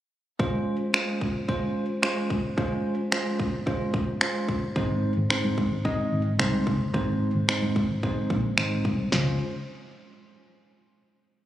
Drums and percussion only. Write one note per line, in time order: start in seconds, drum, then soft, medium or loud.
0.40 kick loud
0.94 finger snap loud
1.21 kick medium
1.49 kick medium
2.03 finger snap loud
2.30 kick medium
2.58 kick loud
3.12 finger snap loud
3.40 kick medium
3.67 kick medium
3.94 kick loud
4.21 finger snap loud
4.49 kick medium
4.76 kick loud
5.30 finger snap loud
5.58 kick medium
5.85 kick medium
6.40 finger snap loud
6.67 kick medium
6.94 kick loud
7.49 finger snap loud
7.76 kick medium
8.03 kick medium
8.30 kick medium
8.58 finger snap loud
8.85 kick medium
9.12 snare medium
9.12 floor tom medium